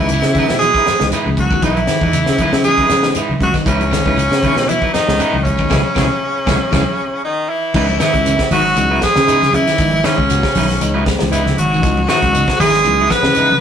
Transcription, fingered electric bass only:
Already playing: C#2
0.24 C#3
0.50 B2
1.01 C#2
1.26 C#2
1.63 B1
2.01 E2
2.29 C#3
2.53 C#3
2.90 C#3
3.29 muted fingered electric bass stroke
3.41 C#2
3.66 C#2
4.06 C#2
4.31 C#3
4.56 B2
5.08 C#2
5.33 C#2
5.71 C#2
5.97 C#2
6.47 C#2
6.72 C#2
7.75 C#2
8.14 C#2
8.51 G#1
8.76 C#2
9.16 C#3
9.54 C#3
9.68 muted fingered electric bass stroke
9.79 G#1
10.18 C#2
10.55 B1
10.82 C#2
11.22 C#2
11.59 G#1
11.84 C#2
12.22 C#2
12.60 G#1
12.85 C#2
13.23 C#3

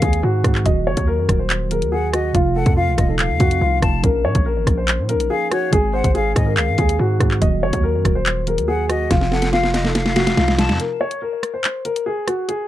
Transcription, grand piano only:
0.02 G#4
0.24 F#4
0.65 D#5
0.87 C#5
1.07 A#4
1.39 C5
1.71 A#4
1.92 G#4
2.13 F#4
2.35 F4
2.56 A4
2.77 F4
3.08 A4
3.40 F#4
3.62 F4
4.04 A#4
4.25 C#5
4.46 A#4
4.78 C5
5.09 A#4
5.30 G#4
5.52 F#4
5.72 G#4
5.93 C5
6.15 G#4
6.46 A#4
6.78 G#4
7.00 F#4
7.42 D#5
7.63 C#5
7.83 A#4
8.15 C5
8.48 A#4
8.68 G#4
8.89 F#4
9.11 F4
9.32 A4
9.52 F4
9.84 A4
10.16 F#4
10.38 F4
10.80 A#4
11.01 C#5
11.22 A#4
11.54 C5
11.85 A#4
12.06 G#4
12.28 F#4
12.48 G#4

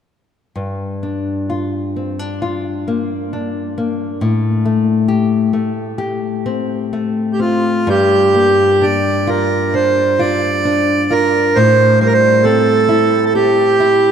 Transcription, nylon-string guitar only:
0.56 G2
1.03 D4
1.50 F4
1.96 C4
2.19 D4
2.42 F4
2.88 A#3
3.33 D4
3.78 A#3
4.21 A2
4.65 A3
5.08 G4
5.53 A3
5.98 G4
6.46 C4
6.93 A3
7.40 C4
7.87 G2
8.35 A#3
8.82 D4
9.27 F4
9.74 D4
10.19 F4
10.65 D4
11.11 F4
11.56 A2
12.01 G3
12.45 C4
12.89 E4
13.35 C4
13.80 E4

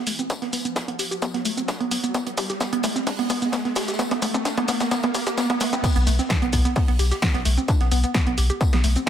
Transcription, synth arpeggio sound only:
0.07 A3
0.19 C4
0.30 D4
0.42 B3
0.53 B3
0.65 B3
0.76 B3
0.88 B3
0.99 G4
1.11 G4
1.22 B3
1.34 B3
1.45 A3
1.57 C4
1.68 D4
1.80 B3
1.91 B3
2.04 B3
2.14 B3
2.27 B3
2.38 G4
2.50 G4
2.61 B3
2.73 B3
2.84 A3
2.96 C4
3.07 D4
3.19 B3
3.30 B3
3.42 B3
3.53 B3
3.65 B3
3.76 G4
3.88 G4
3.99 B3
4.11 B3
4.22 A3
4.34 C4
4.45 D4
4.58 B3
4.68 B3
4.81 B3
4.91 B3
5.04 B3
5.14 G4
5.27 G4
5.38 B3
5.50 B3
5.61 A3
5.73 C4
5.84 B3
5.96 B3
6.07 A3
6.19 C4
6.30 D4
6.42 B3
6.53 B3
6.65 B3
6.76 B3
6.88 B3
6.99 G4
7.11 G4
7.22 B3
7.34 B3
7.45 A3
7.58 C4
7.69 D4
7.81 B3
7.92 B3
8.04 B3
8.15 B3
8.27 B3
8.38 G4
8.50 G4
8.61 B3
8.73 B3
8.84 A3
8.96 C4

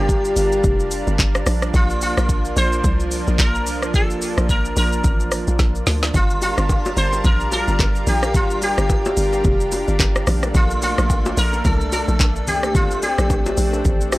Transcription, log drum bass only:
Already playing: G1
0.36 G1
0.64 F1
1.07 G1
1.19 G1
1.46 A#1
1.74 A#1
2.17 A#1
2.57 A#1
2.84 C2
3.28 A#1
3.39 A#1
3.67 C2
3.94 A#1
4.38 A#1
4.77 A#1
5.04 A1
5.48 A#1
5.59 A#1
5.87 D2
6.14 G1
6.58 G1
6.97 G1
7.25 A#1
7.68 G1
7.79 G1
8.07 A#1
8.35 G1
8.78 G1
9.17 G1
9.45 F1
9.88 G1
9.99 G1
10.27 A#1
10.55 A#1
10.98 A#1
11.37 A#1
11.65 C2
12.08 A#1
12.20 A#1
12.47 C2
12.75 A#1
13.18 A#1
13.58 A#1
13.85 A1

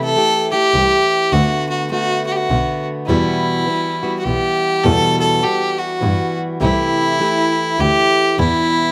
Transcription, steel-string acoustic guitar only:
Already playing: C3 E3 A3 E4 G4
0.16 E3 A3 E4 G4
0.51 A3 E4 G4
0.74 E3 A3 E4 G4
1.33 D3 A3 B3 F#4
1.91 D3 A3 B3 F#4
2.49 D3 A3 B3 F#4
3.08 E2 B2 E3 G3 B3 F#4
3.66 E3 G3 B3 F#4
4.03 E3 G3 B3 F#4
4.25 E3 G3 B3
4.84 E2 B2 E3 G3 B3 F#4
5.42 E3 G3 B3 F#4
6.01 E3 G3 B3 F#4
6.60 C3 E3 A3 E4 G4
7.20 E3 A3 E4 G4
7.78 E3 A3 E4 G4
8.37 E2 B2 E3 G3 B3 E4

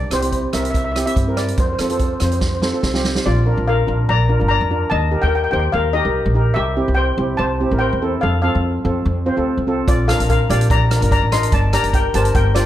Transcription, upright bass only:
0.10 C2
0.53 C2
1.16 G2
1.57 F2
1.79 F2
2.21 F2
2.83 C2
3.26 A#1
3.57 A#1
3.88 A#1
4.09 A#1
4.41 G1
4.61 F2
4.91 D#2
5.23 D#2
5.53 D#2
5.73 D#2
6.05 C2
6.25 A#1
6.56 C2
6.88 C2
7.18 C2
7.38 C2
7.71 A1
7.92 E2
8.23 F2
8.55 F2
8.85 F2
9.05 F2
9.37 D2
9.57 C2
9.88 A#1
10.19 A#1
10.49 A#1
10.70 A#1
11.01 G1
11.22 A1
11.52 G1
11.83 G1
12.14 G1
12.35 G1

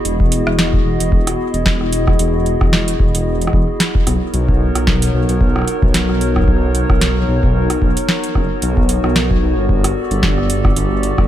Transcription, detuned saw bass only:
0.05 E1
0.47 E1
0.85 E1
1.00 E1
1.54 E1
2.19 E1
2.61 E1
3.00 E1
3.15 E1
3.53 E1
4.07 B1
4.34 B1
4.75 B1
5.14 B1
5.29 B1
5.83 B1
6.48 B1
6.90 B1
7.28 B1
7.43 B1
7.82 B1
8.35 F#1
8.62 B1
9.04 B1
9.43 B1
9.57 G1
10.11 G1
10.76 G1
11.18 G1

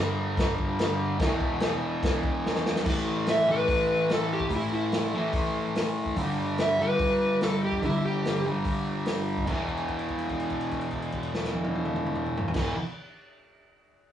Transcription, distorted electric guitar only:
Already playing: G2 D3 G3
1.18 E2 B2
1.23 E3
2.84 A2 E3 A3
3.46 A2 E3 A3
4.50 A2 E3 A3
5.14 A2 E3 A3
6.16 G2 D3 G3
6.79 G2 D3 G3
7.83 G2 D3 G3
8.44 G2 D3 G3
9.46 E2 B2
9.51 E3
12.54 E2 B2
12.59 E3

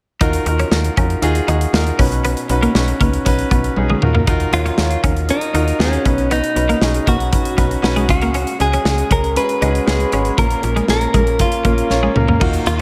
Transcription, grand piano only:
0.21 D#3 D#4 F4 F#4 A#4
0.46 D#4 F4 F#4 A#4
0.71 D#4 F4 F#4 A#4
0.97 D#4 F4 F#4 A#4
1.22 D#4 F4 F#4 G#4
1.48 D#4 F4 F#4 G#4
1.73 D#4 F4 F#4 A#4
1.98 B2 C#4 D#4 F#4 B4
2.50 C#4 D#4 F#4 B4
2.75 C#4 D#4 F#4 B4
3.00 C#4 D#4 F#4 B4
3.25 C#4 D#4 F#4 B4
3.51 C#4 D#4 F#4 B4
3.77 C#4 D#4 F#4 G#4
4.02 D#4 F4 F#4 A#4
4.27 D#3 D#4 F4 F#4 A#4
4.52 D#4 F4 F#4 C#5
4.78 D#4 F4 F#4 C#5
5.03 D#4 F4 F#4 A#4
5.29 D#4 F4 F#4 A#4
5.54 D#4 F4 F#4 A#4
5.79 D#4 F4 F#4 G#4
6.04 B2 C#4 D#4 F#4 B4
6.55 C#4 D#4 F#4 B4
6.81 C#4 D#4 F#4 G#4
7.06 C#4 D#4 F#4 B4
7.32 C#4 D#4 F#4 B4
7.57 C#4 D#4 F#4 B4
7.82 C#4 D#4 F#4 B4
8.08 C#3 G#3 C#4 F#4 G#4
8.59 G#3 C#4 F#4 G#4
8.85 G#3 C#4 F#4 G#4
9.10 G#3 C#4 F#4 G#4
9.35 G#3 C#4 F#4 G#4
9.61 G#3 C#4 F#4 G#4
9.86 G#3 C#4 F#4 G#4
10.12 G#3 C#4 F#4 G#4
10.37 A#2 A#3 C#4 F4 A#4
10.62 A#3 C#4 F4 A#4
10.88 A#3 C#4 F4 A#4
11.14 A#3 C#4 F4 A#4
11.40 A#3 C#4 F4 A#4
11.65 A#3 C#4 F4 A#4
11.90 A#3 C#4 F4 C#5
12.15 A#3 C#4 F4 A#4
12.40 D#3 A#3 D#4 F4 F#4
12.66 A#3 D#4 F4 F#4

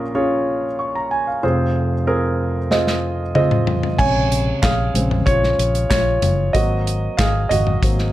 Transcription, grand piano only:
Already playing: A#1 A#2 C#4 F4 G#4 A#4
0.15 C#4 F4 G#4 C#5
0.79 C#6
0.95 A#5
1.11 G#5
1.27 F5
1.43 F1 F2 C4 F4 G#4 C5
2.07 C4 F4 G#4 A#4
2.71 C4 F4 G#4 D#5
3.35 C4 F4 G#4 D#5
3.98 C3 C#3 G#3 C#5 G#5
4.62 G#4 F5
4.95 C#3 G#3 C4
5.26 F4 C#5
5.90 F4 C#5
6.53 F#3 A#3 C4 F#4 D#5
7.17 G#4 F5
7.49 F#4 D#5
7.83 F#3 A#3 C4

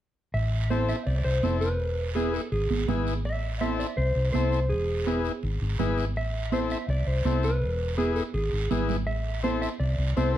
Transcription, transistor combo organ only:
0.71 C4 E4 A4
1.43 C4 E4 A4
2.15 B3 E4 G#4
2.88 B3 E4 G#4
3.61 C4 E4 A4
4.34 C4 E4 A4
5.07 B3 E4 G#4
5.79 B3 E4 G#4
6.52 C4 E4 A4
7.25 C4 E4 A4
7.97 B3 E4 G#4
8.71 B3 E4 G#4
9.43 C4 E4 A4
10.17 C4 E4 A4

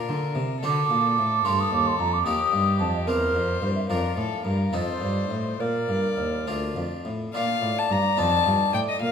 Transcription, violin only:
Already playing: A#4
0.62 A4
2.27 G4
3.08 C5
3.90 A#4
4.18 A4
4.46 A#4
4.75 C5
5.60 D5
7.34 F5
7.79 A5
7.92 A#5
8.18 A5
8.74 G5
8.89 D#5
9.02 F5

